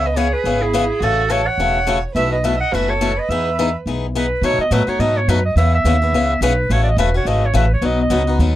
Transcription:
Already playing: C#2
0.05 B4 D#5
0.16 C#3 E3 B3 C#4 G#4 C#5
0.32 G#4 B4
0.44 G#1 C#3 E3 B3 C#4 G#4
0.60 E4 G#4
0.74 C#3 E3 B3 C#4 G#4
1.00 A1 C#3 E3 A3 C#4 F#4 A4
1.29 C#3 E3 A3 C#4 F#4 A4 C#5
1.46 C#5 F#5
1.58 E1 C#3 E3 A3 C#4 F#4
1.87 C#3 E3 A3 C#4 F#4
2.15 B1 B2 E3 A3 E4 F#4 B4 E5
2.31 B4 D#5
2.42 B2 E3 A3 E4 F#4 B4 E5
2.58 D#5 F#5
2.72 F#1 B2 E3 A3 E4 F#4 B4
2.88 A4 C#5
3.01 B2 E3 A3 E4 F#4
3.16 B4 D#5
3.29 E2 E3 B3 D#4 G#4 B4 E5
3.59 E3 B3 D#4 G#4
3.86 B1 E3 B3 D#4 G#4
4.15 E3 B3 D#4 G#4 B4
4.42 B2 F#3 A3 D#4 F#4 C#5
4.58 D#5, muted upright bass stroke
4.71 A2 B2 F#3 A3 D#4 F#4 B4
4.87 A3 D#4 F#4 C#5, muted upright bass stroke
4.99 G#2 B2 F#3 A3 D#4 F#4 D#5
5.17 C#5
5.28 F#2 B2 F#3 A3 D#4 F#4 B4
5.45 D#5
5.56 E2 C#3 E3 B3 C#4 G#4 E5
5.75 E5
5.84 D#2 C#3 E3 B3 C#4 G#4
6.02 B3 C#4 G#4
6.13 C#2 C#3 E3 B3 C#4 G#4
6.41 B1 C#3 E3 B3 C#4 G#4 B4
6.69 A1 C#3 E3 A3 C#4 F#4 C#5
6.84 D5
6.88 D#5
6.97 E1 C#3 E3 A3 C#4 F#4 B4
7.14 A3 C#4 F#4 C#5
7.25 G#1 C#3 E3 A3 C#4 F#4 D#5
7.46 C#5
7.54 A1 C#3 E3 A3 C#4 F#4 B4
7.73 C#5
7.82 B1 B2 F#3 B3 D#4 F#4
7.86 D#5
8.02 D#5
8.10 C#2 B2 F#3 B3 D#4 F#4
8.27 B3 D#4 F#4
8.39 D#2 B2 F#3 B3 D#4 F#4

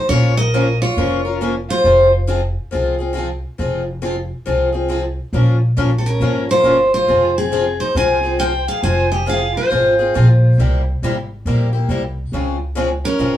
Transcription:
0.09 A#1 F3 A#3 C#4 F4 A#4 C#5
0.37 A#4 D#5
0.54 F3 A#3 C#4 F4 A#4
0.82 F4 C#5
0.97 F1 F3 A#3 C#4 F4 A#4
1.25 C#4 F4 A#4
1.41 F3 A#3 C#4 F4 A#4
1.69 F4 C5
1.84 F1 F3 C4 F4 G#4
2.27 F3 C4 F4 G#4
2.71 C2 F3 C4 F4 G#4
2.99 C4 F4 G#4
3.13 F3 C4 F4 G#4
3.17 F3
3.58 F1 F3 C4 F4 G#4
4.02 F3 C4 F4 G#4
4.46 C2 F3 C4 F4 G#4
4.73 C4 F4 G#4
4.88 F3 C4 F4 G#4
5.33 A#1 F3 A#3 C#4 F4 A#4
5.77 A#1 F3 A#3 C#4 F4 A#4
5.98 C4 A4
6.06 C#4 A#4
6.20 G#1 F3 A#3 C#4 F4 A#4
6.49 C#4 F4 A#4 C5
6.63 G1 F3 A#3 C#4 F4 A#4
6.94 F4 C5
7.07 F1 F3 C4 F4 G#4
7.37 C4 G#4
7.52 F3 C4 F4 G#4
7.80 D#4 C5
7.95 C2 F3 C4 F4 G#4 C5 G#5
8.23 C4 F4 G#4
8.39 F3 C4 F4 G#4 C5 G5
8.68 G#4 F5
8.83 F1 F3 C4 F4 G#4 C5 G#5
9.12 G4 D#5
9.26 F3 C4 F4 G#4 F5
9.56 F4 C5
9.71 G#1 F3 C4 F4 G#4
9.99 C4 F4 G#4
10.14 A#1 F3 C4 F4 G#4
10.58 C2 C3 G3 A#3 E4 G4
11.02 G#1 C3 G3 A#3 E4 G4
11.45 A#1 C3 G3 A#3 E4 G4
11.73 A#3 E4 G4
11.89 C2 C3 G3 A#3 E4 G4
12.32 C#2 C#3 G#3 C4 F4 G#4
12.75 C#3 G#3 C4 F4 G#4
13.04 C#4 A#4
13.19 G#1 C#3 G#3 C4 F4 G#4

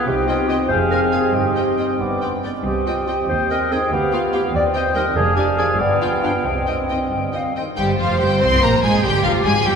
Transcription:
0.06 C2 C3 C4 D#4 G4 D#5 G5
0.28 C4 F4 D#5 G5
0.47 C4 G4 D#5 G5
0.68 F1 F2 G#4 C5 F5 G#5
0.90 C4 A#4 F5 G#5
1.12 C4 G#4 F5 G#5
1.34 G1 G2 D#4 G4 D#5 G5
1.56 C4 D#5 G5
1.77 C4 D#5 G5
1.99 G1 G2 B3 D4 D5
2.21 B3 C5 D5 G5
2.43 B3 D5 G5
2.65 C2 C4 G4 D#5 G5
2.86 C4 F4 D#5 G5
3.07 C4 D#4 G4 D#5 G5
3.29 D#2 C5
3.50 C4 A#4 D#5 G5
3.71 C4 D#4 G#4 D#5 G5
3.92 D2 B3 G4 F5
4.12 B3 F4 F5 G5
4.33 B3 F4 G4 F5 G5
4.54 D#2 C4 D5 D#5
4.74 C4 C5 D#5 G5
4.94 G3 C4 D#4 A#4 D#5 G5
5.15 F1 F2 D4 G#4 F5 G#5
5.36 D4 G4 D5 G#5
5.57 F3 D4 G#4 D5 G#5
5.79 G1 G2 B3 D5 G5
6.01 B3 F4 F5 G5
6.23 F3 B3 D4 F5 G5
6.45 C2 C3 C4 D#5
6.66 C4 D#5 G5
6.89 D#3 C4 D#5 G5
7.11 G1 G2 G5
7.33 C4 D#5 F5 G5
7.56 D#3 C4 D#5 G5
7.77 G1 G3 G4 C5 G5
7.99 F1 F3 F4 F5
8.19 G1 G3 G4 G5
8.41 C2 C4 C5 C6
8.62 A#1 A#3 A#4 A#5
8.84 G#1 G#3 G#4 G#5
9.04 G1 G3 G4 G5
9.23 F1 F3 F4 F5
9.44 G#1 G#3 G#4 G#5
9.65 G1 G3 G4 G5

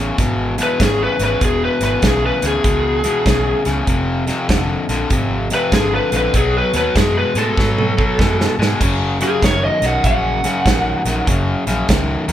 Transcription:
Already playing: A1 E2 C#3
0.18 G#1 E2 B2, kick, snare, closed hi-hat
0.58 E2 B2, snare, closed hi-hat
0.63 B4
0.80 G#1 E2 C#3 G#4, kick, snare, closed hi-hat
1.04 B4
1.19 G#1 E2 C#3, snare, closed hi-hat
1.24 B4
1.41 E1 E2 B2 G#4, kick, closed hi-hat
1.65 B4
1.81 G#1 E2 B2 B4, snare, closed hi-hat
2.02 B1 E2 C#3, kick, snare, closed hi-hat
2.06 G#4
2.26 B4
2.42 D2 E2 C#3, snare, closed hi-hat
2.47 G#4
2.64 C#2 E2 B2, kick, closed hi-hat
3.04 E2 B2, snare, closed hi-hat
3.26 B1 E2 C#3, kick, snare, closed hi-hat
3.65 C#2 E2 C#3, snare, closed hi-hat
3.87 F1 F2 C3, kick, closed hi-hat
4.27 F2 C3, snare, closed hi-hat
4.49 F1 F2 D3, kick, snare, closed hi-hat
4.88 A#1 F2 D3, snare, closed hi-hat
5.10 G#1 F2 C3, kick, closed hi-hat
5.50 F2 C3, snare, closed hi-hat
5.54 B4
5.72 G#1 F2 D3 G#4, kick, snare, closed hi-hat
5.95 B4
6.12 A#1 F2 D3, snare, closed hi-hat
6.17 B4
6.34 B1 B2 F#3 G#4, kick, closed hi-hat
6.58 B4
6.74 D#2 B2 F#3 B4, snare, closed hi-hat
6.96 F#2 B2 G#3 G#4, kick, snare, closed hi-hat
7.18 B4
7.35 A2 B2 G#3 A4, snare, closed hi-hat
7.57 G#2 B2 F#3, kick, snare
7.78 high tom
7.97 B2 F#3, kick
8.19 F#2 B2 G#3, kick, snare
8.41 snare
8.58 G#2 B2 G#3, snare
8.81 F#1 F#2 C#3, kick, closed hi-hat, crash
9.21 F#2 C#3 G#4, snare, closed hi-hat
9.42 F#1 F#2 D#3 C#5, kick, snare, closed hi-hat
9.65 D#5
9.82 B1 F#2 D#3, snare, closed hi-hat
9.86 F#5
10.04 A#1 F#2 C#3 F#5, kick, closed hi-hat
10.44 F#2 C#3, snare, closed hi-hat
10.66 A#1 F#2 D#3, kick, snare, closed hi-hat
11.05 A#1 F#2 D#3, snare, closed hi-hat
11.27 F#1 F#2 C#3, kick, closed hi-hat
11.67 A#1 F#2 C#3, snare, closed hi-hat
11.89 C#2 F#2 D#3, kick, snare, closed hi-hat
12.28 E2 F#2 D#3, closed hi-hat

